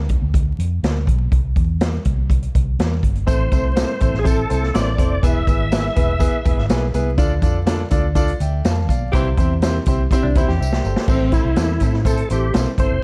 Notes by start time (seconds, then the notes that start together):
Already playing: D2
0.09 kick, closed hi-hat
0.22 D2
0.34 kick, closed hi-hat
0.59 F2, closed hi-hat
0.83 D2, snare, closed hi-hat
1.07 B1, kick, closed hi-hat
1.32 C2, kick, closed hi-hat
1.56 E2, kick, closed hi-hat
1.81 snare, closed hi-hat
2.05 C2, kick, closed hi-hat
2.30 kick, closed hi-hat
2.42 closed hi-hat
2.55 C2, kick, closed hi-hat
2.79 E2, snare, closed hi-hat
3.03 G1, kick, closed hi-hat
3.15 closed hi-hat
3.27 A1 A2 C4 E4 A4 C5, kick, closed hi-hat, tambourine
3.52 C2 C4 E4 A4 C5, kick, closed hi-hat, tambourine
3.76 C4 E4 A4 C5, snare, closed hi-hat, tambourine
4.00 A1 C4 E4 A4 C5, kick, closed hi-hat, tambourine
4.14 A1, snare
4.19 G#4
4.24 C4 E4 A4 C5, kick, closed hi-hat, tambourine
4.50 C2 C4 E4 A4 C5, closed hi-hat, tambourine
4.63 snare
4.74 A1 C4 E4 A4 C5 D5, snare, closed hi-hat, tambourine
4.98 F1 C4 E4 A4 C5, kick, closed hi-hat, tambourine
5.23 E1 E3 B3 E4 G#4 B4 E5, kick, closed hi-hat, tambourine
5.47 G#1 B3 E4 G#4 B4, kick, closed hi-hat, tambourine
5.72 B3 E4 G#4 B4, snare, closed hi-hat, tambourine
5.96 E1 B3 E4 G#4 B4, kick, closed hi-hat, tambourine
6.19 B3 E4 G#4 B4, kick, closed hi-hat, tambourine
6.45 E1 B3 E4 G#4 B4, kick, closed hi-hat, tambourine
6.57 G#1, snare
6.69 B1 B3 E4 G#4 B4, snare, closed hi-hat, tambourine
6.94 C2 B3 E4 G#4 B4, closed hi-hat, tambourine
7.18 D2 D3 D4 F4 A4 D5, kick, closed hi-hat, tambourine
7.42 F2 D4 F4 A4 D5, kick, closed hi-hat, tambourine
7.66 D4 F4 A4 D5, snare, closed hi-hat, tambourine
7.90 D2 D4 F4 A4 D5, kick, closed hi-hat, tambourine
8.15 D4 F4 A4 D5, kick, closed hi-hat, tambourine
8.28 closed hi-hat
8.40 D2 E5 G5, closed hi-hat, tambourine
8.64 F2 F5 A5, snare, closed hi-hat, tambourine
8.89 B1 D5 F5, kick, closed hi-hat, tambourine
9.12 C2 C3 E3 C4 E4 G4 C5, kick, closed hi-hat, tambourine
9.37 E2 C4 E4 G4 C5, kick, closed hi-hat, tambourine
9.62 C4 E4 G4 C5, snare, closed hi-hat, tambourine
9.86 C2 C4 E4 G4 C5, kick, closed hi-hat, tambourine
10.11 C4 E4 G4 C5, kick, closed hi-hat, tambourine
10.23 C2 D4
10.35 D2 C4 E4 G4 C5, kick, closed hi-hat, tambourine
10.48 E2 G4, snare
10.60 C2 C5 E5, tambourine
10.72 snare
10.84 G1 A4 C5, tambourine
10.96 snare
11.08 A1 A2 C4 E4 A4 C5, kick, crash, tambourine
11.32 C4 E4 A4 C5, kick, closed hi-hat, tambourine
11.45 C2
11.56 E2 C4 E4 A4 C5, snare, closed hi-hat, tambourine
11.80 A2 C4 E4 A4 C5, kick, closed hi-hat, tambourine
11.93 snare
12.05 C4 E4 A4 C5, kick, closed hi-hat, tambourine
12.17 closed hi-hat
12.30 A1 C4 E4 G4 A4 C5, closed hi-hat, tambourine
12.54 B1 C4 E4 A4 C5, snare, closed hi-hat, tambourine
12.78 G1 C4 E4 A4 C5, kick, closed hi-hat, tambourine
12.91 F1